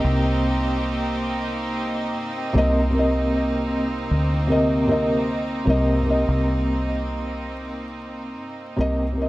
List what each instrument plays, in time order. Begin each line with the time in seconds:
Already playing: felt piano C3 A#3 D#5, string section A#3 C4 D#4 G4
0.04 fingered electric bass C2
2.16 fingered electric bass G2
2.53 fingered electric bass C2, felt piano C3 A#3
2.58 felt piano D#5
2.90 felt piano C3
2.94 felt piano A#3
2.99 felt piano D#5
4.11 fingered electric bass D2
4.47 felt piano C3 A#3
4.52 felt piano D#5
4.87 felt piano C3 A#3
4.91 felt piano D#5
5.65 fingered electric bass C2, felt piano C3 A#3
5.69 felt piano D#5
6.01 felt piano C3
6.06 felt piano A#3
6.10 felt piano D#5
6.28 fingered electric bass C2
8.40 fingered electric bass G2
8.76 fingered electric bass C2, felt piano C3 A#3
8.80 felt piano D#5
9.12 felt piano C3
9.17 felt piano A#3
9.21 felt piano D#5